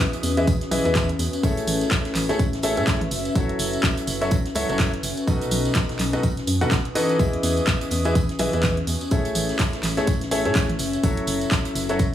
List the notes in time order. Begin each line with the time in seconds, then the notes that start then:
Already playing: E3 C#4 E4 F#4 G#4 B4 D#5 E5 D#6
0.00 snare, tambourine
0.13 closed hi-hat
0.23 E2, open hi-hat, tambourine
0.37 E3 E4 G#4 B4 D#5 E5, closed hi-hat, tambourine
0.47 kick, closed hi-hat, tambourine
0.61 snare, closed hi-hat
0.71 B1 E3 E4 G#4 B4 D#5 E5, open hi-hat, tambourine
0.85 E2 E3 E4 G#4 B4 D#5 E5, closed hi-hat, tambourine
0.95 kick, snare, clap, closed hi-hat, tambourine
1.09 closed hi-hat
1.19 E2, open hi-hat, tambourine
1.33 closed hi-hat, tambourine
1.43 A1 A3 E4 G#4 A4 C#5 E5, kick, closed hi-hat, tambourine
1.57 closed hi-hat
1.67 A1, open hi-hat, tambourine
1.81 E5, snare, closed hi-hat, tambourine
1.91 A1, kick, snare, clap, closed hi-hat, tambourine
2.05 snare, closed hi-hat
2.15 A1, snare, clap, open hi-hat, tambourine
2.29 A3 E4 G#4 A4 C#5 E5, snare, closed hi-hat, tambourine
2.39 A1, kick, closed hi-hat, tambourine
2.53 snare, closed hi-hat
2.63 A3 E4 G#4 A4 C#5 E5, open hi-hat, tambourine
2.77 A2 A3 E4 G#4 A4 C#5 E5, closed hi-hat, tambourine
2.87 kick, snare, clap, closed hi-hat, tambourine
3.01 A1, closed hi-hat
3.11 F#1, open hi-hat, tambourine
3.25 closed hi-hat, tambourine
3.35 F#1 F#3 E4 F#4 A4 C#5 E5, kick, closed hi-hat, tambourine
3.49 closed hi-hat
3.59 F#1, open hi-hat, tambourine
3.73 closed hi-hat, tambourine
3.83 F#1, kick, snare, clap, closed hi-hat, tambourine
3.97 closed hi-hat
4.07 F#1, open hi-hat, tambourine
4.21 F#3 E4 F#4 A4 C#5 E5, closed hi-hat, tambourine
4.31 kick, closed hi-hat, tambourine
4.45 snare, closed hi-hat
4.55 C#2 F#3 E4 F#4 A4 C#5 E5, open hi-hat, tambourine
4.69 F#1 F#3 E4 F#4 A4 C#5 E5, closed hi-hat, tambourine
4.79 kick, snare, clap, closed hi-hat, tambourine
4.93 closed hi-hat
5.03 F#1, open hi-hat, tambourine
5.17 closed hi-hat, tambourine
5.27 B1 B2 D#4 F#4 A4 B4 D#5, kick, closed hi-hat, tambourine
5.41 closed hi-hat
5.51 B1, open hi-hat, tambourine
5.65 snare, closed hi-hat, tambourine
5.75 B1, kick, snare, clap, closed hi-hat, tambourine
5.89 snare, closed hi-hat
5.99 B1, snare, clap, open hi-hat, tambourine
6.13 B2 D#4 F#4 A4 B4 D#5 D#6, snare, closed hi-hat, tambourine
6.23 B1, kick, closed hi-hat, tambourine
6.37 snare, closed hi-hat
6.47 F#2, open hi-hat, tambourine
6.61 D#2 B2 D#4 F#4 A4 B4 F#5, closed hi-hat, tambourine
6.71 kick, snare, clap, closed hi-hat, tambourine
6.85 closed hi-hat
6.95 E3 D#4 F#4 A4 B4 D#5, open hi-hat, tambourine
7.09 closed hi-hat, tambourine
7.19 E2 E3 E4 G#4 B4 D#5 E5, kick, closed hi-hat, tambourine
7.33 closed hi-hat
7.43 E2, open hi-hat, tambourine
7.57 closed hi-hat, tambourine
7.66 E2, kick, snare, clap, closed hi-hat, tambourine
7.81 closed hi-hat
7.91 E2, open hi-hat, tambourine
8.04 E3 E4 G#4 B4 D#5 E5, closed hi-hat, tambourine
8.15 kick, closed hi-hat, tambourine
8.29 snare, closed hi-hat
8.39 B1 E3 E4 G#4 B4 D#5 E5, open hi-hat, tambourine
8.53 E2 E3 E4 G#4 B4 D#5 E5, closed hi-hat, tambourine
8.63 kick, snare, clap, closed hi-hat, tambourine
8.77 closed hi-hat
8.87 E2, open hi-hat, tambourine
9.01 closed hi-hat, tambourine
9.11 A1 A3 C#4 E4 G#4 A4 C#5 E5, kick, closed hi-hat, tambourine
9.25 closed hi-hat
9.35 A1, open hi-hat, tambourine
9.49 snare, closed hi-hat, tambourine
9.59 A1, kick, snare, clap, closed hi-hat, tambourine
9.73 snare, closed hi-hat
9.83 A1, snare, clap, open hi-hat, tambourine
9.88 E5
9.97 A3 E4 G#4 A4 C#5 E5, snare, closed hi-hat, tambourine
10.07 A1, kick, closed hi-hat, tambourine
10.21 snare, closed hi-hat
10.31 A3 E4 G#4 A4 C#5 E5, open hi-hat, tambourine
10.45 A2 A3 E4 G#4 A4 C#5 E5, closed hi-hat, tambourine
10.55 kick, snare, clap, closed hi-hat, tambourine
10.69 A1, closed hi-hat
10.79 F#1, open hi-hat, tambourine
10.93 closed hi-hat, tambourine
11.03 F#1 F#3 E4 F#4 A4 C#5 E5, kick, closed hi-hat, tambourine
11.08 F#4
11.17 B4, closed hi-hat
11.27 F#1, open hi-hat, tambourine
11.41 closed hi-hat, tambourine
11.51 F#1, kick, snare, clap, closed hi-hat, tambourine
11.65 closed hi-hat
11.75 F#1, open hi-hat, tambourine
11.89 F#3 E4 F#4 A4 C#5 E5, closed hi-hat, tambourine
11.99 kick, closed hi-hat, tambourine